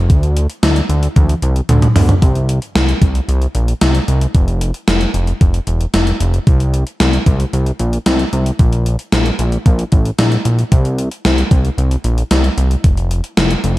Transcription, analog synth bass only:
0.00 0.11 F1 loud
0.10 0.47 D2 loud
0.63 0.81 D2 loud
0.89 1.08 D2 loud
1.16 1.35 D2 loud
1.42 1.61 C2 loud
1.69 1.88 D2 loud
1.96 2.14 D2 loud
2.22 2.59 C2 loud
2.75 2.94 C2 medium
3.02 3.20 C2 loud
3.28 3.47 C2 loud
3.55 3.74 A#1 medium
3.82 4.00 C2 loud
4.08 4.27 C2 loud
4.35 4.72 F1 loud
4.88 5.06 F1 loud
5.14 5.33 F1 loud
5.41 5.60 F1 loud
5.67 5.86 E1 medium
5.94 6.12 F1 loud
6.20 6.39 F1 loud
6.47 6.84 C2 loud
7.00 7.19 C2 loud
7.26 7.45 C2 loud
7.53 7.72 C2 loud
7.80 7.98 A#1 medium
8.06 8.25 C2 loud
8.33 8.51 C2 loud
8.59 8.97 A#1 loud
9.12 9.31 A#1 loud
9.39 9.58 A#1 loud
9.66 9.84 A#1 loud
9.92 10.11 A1 loud
10.19 10.37 A#1 loud
10.45 10.64 A#1 loud
10.72 11.09 C2 loud
11.25 11.43 C2 medium
11.51 11.70 C2 loud
11.78 11.96 C2 loud
12.04 12.23 A#1 medium
12.31 12.50 C2 loud
12.57 12.76 C2 loud
12.84 13.21 F1 loud
13.37 13.56 F1 loud
13.64 13.79 F1 loud

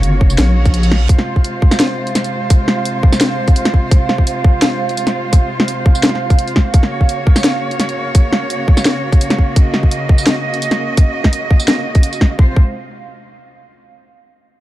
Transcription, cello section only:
0.00 1.05 C#3 medium
0.00 1.05 A#3 medium
0.00 1.05 F#4 medium
0.00 1.05 C#5 medium
1.09 6.70 C3 medium
1.09 6.70 G#3 medium
1.09 6.70 F4 medium
1.09 6.70 C5 medium
6.74 12.35 C#3 medium
6.74 12.35 A#3 medium
6.74 12.35 F#4 medium
6.74 9.53 C#5 medium
9.56 12.36 D#5 medium
12.39 12.55 C3 medium
12.39 12.55 G#3 medium
12.39 12.55 F4 medium
12.39 12.55 C5 medium

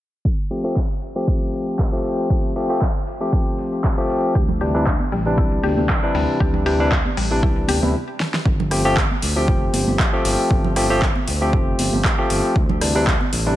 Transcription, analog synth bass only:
4.35 4.96 D2 medium
5.12 5.39 A1 medium
5.38 5.59 C2 medium
5.63 5.75 D2 loud
5.77 5.87 D2 medium
6.15 6.26 D2 medium
6.40 7.01 D2 medium
7.17 7.44 A1 medium
7.43 7.64 C2 medium
7.69 7.80 D2 loud
7.82 7.94 D2 medium
8.46 9.06 G1 medium
9.22 9.50 D2 medium
9.48 9.69 F1 medium
9.74 9.85 G1 medium
9.87 9.97 G1 loud
10.25 10.36 G1 medium
10.51 11.11 G1 loud
11.28 11.55 D2 medium
11.53 11.74 F1 medium
11.79 11.90 G1 loud
11.93 12.02 G1 loud
12.30 12.41 G1 medium
12.56 13.17 D2 loud
13.33 13.56 A1 medium

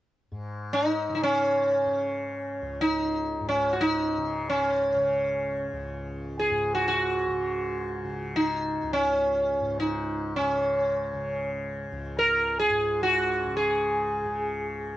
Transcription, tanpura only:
0.32 3.40 G#2 soft
1.09 1.87 C#3 soft
1.87 4.18 C#3 soft
2.62 5.73 C#2 soft
3.41 6.50 G#2 soft
4.18 4.96 C#3 soft
4.96 7.28 C#3 soft
5.73 8.83 C#2 soft
6.50 9.60 G#2 medium
7.28 8.05 C#3 soft
8.05 10.39 C#3 soft
8.83 11.92 C#2 soft
9.61 12.69 G#2 soft
10.39 11.14 C#3 soft
11.14 13.47 C#3 soft
11.92 14.97 C#2 soft
12.70 14.97 G#2 soft
13.47 14.26 C#3 medium
14.26 14.97 C#3 soft

